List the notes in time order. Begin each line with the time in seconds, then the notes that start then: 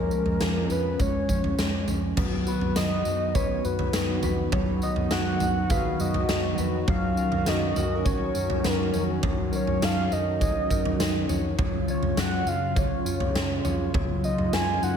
Already playing: F3 G#3 C#4 F4 A#4
0.11 C#4, tambourine
0.26 F2, floor tom
0.40 F2 F4, snare, tambourine
0.70 F2 C#4 B4, tambourine
0.99 F2 G#3 C#5, kick, floor tom, tambourine
1.29 F2 C#4, kick, tambourine
1.44 floor tom
1.58 F2 G#3, snare, tambourine
1.88 F2 C#4, floor tom, tambourine
2.17 F#2 D#3 F#3 B3 F#4 B4, kick, floor tom, crash
2.46 F#4 B4, tambourine
2.61 F#2, floor tom
2.76 F#2 D#4 D#5, snare, tambourine
3.05 F#2 F#4, tambourine
3.35 B4 C#5, kick, floor tom, tambourine
3.64 F#2 F#4 B4, tambourine
3.79 floor tom
3.93 F#2 D#4, snare, tambourine
4.23 F2 B4, floor tom, tambourine
4.52 F#2 F#3 B4 C#5, kick, floor tom
4.82 F#4 D#5, tambourine
4.96 F#2, floor tom
5.11 F#2 D#4 F#5, snare, tambourine
5.40 F#2 F#4, floor tom, tambourine
5.70 G#4 B4 F5, kick, floor tom, tambourine
6.00 F#2 F#4 D#5, tambourine
6.14 floor tom
6.28 F#2 D#4, snare, tambourine
6.58 F2 B4, tambourine
6.88 F#2 F#3 C#4 C#5 F5, kick, floor tom
7.17 A#4, tambourine
7.32 F#2, floor tom
7.46 F#2 D#4 D#5, snare, tambourine
7.76 F#2 F#4 A#4, floor tom, tambourine
7.95 A#4
8.05 C#5, kick, floor tom, tambourine
8.17 C#5
8.34 F#2 A#4, tambourine
8.50 floor tom
8.64 F#2 D#4 A#4, snare, tambourine
8.93 F2 C#5, tambourine
9.23 F#2 F#3 C#5, kick, floor tom
9.52 A#4 C#5, tambourine
9.67 F#2, floor tom
9.82 F#2 D#4 F5, snare, tambourine
10.11 F#2 A#4 D#5, tambourine
10.41 C#5, kick, floor tom, tambourine
10.70 F#2 D#4 A#4, kick, tambourine
10.85 floor tom
10.99 F#2 D#4, snare, tambourine
11.29 F2 C#5, floor tom, tambourine
11.58 F#2 C#3 F#3 F4 C#5, kick, floor tom
11.88 F4 C#5, tambourine
12.02 F#2, floor tom
12.17 F#2 C#4 F#5, snare, tambourine
12.45 F#2 F4 F5, tambourine
12.76 C#5, kick, floor tom, tambourine
13.05 F#2 F4, tambourine
13.20 floor tom
13.34 F#2 C#4, snare, tambourine
13.64 F2 C#5, floor tom, tambourine
13.94 F#2 F#3 C#5, kick, floor tom
14.24 F4 D#5, tambourine
14.38 F#2, floor tom
14.53 F#2 C#4 G#5, snare, tambourine
14.73 G#4
14.82 F#2 D#4 F#5, tambourine